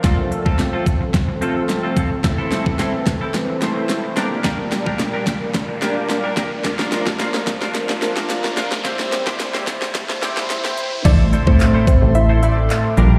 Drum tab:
CC |----------------|----------------|----------------|----------------|
HH |x-x-x-x-x-x-x-x-|x-x-x-x-x-x-x-x-|x-x-x-x-x-x-x-x-|x-x-x-x-x-x-x-x-|
CP |----------------|----------------|----------------|----------------|
SD |o---o---o---o---|o-o-o-o-o-o-o-o-|o-o-o-o-o-o-o-o-|oooooooooooooooo|
BD |o--o--o-o-----o-|o--o--o---------|o--o--o-o-----o-|o--o--o---------|

CC |----------------|x---------------|
HH |x-x-x-x-x-x-x-x-|x-x-x-x-x-x-x-x-|
CP |----------------|----x-------x---|
SD |oooooooooooooo--|----------------|
BD |o--o--o-o-------|o--o--o---------|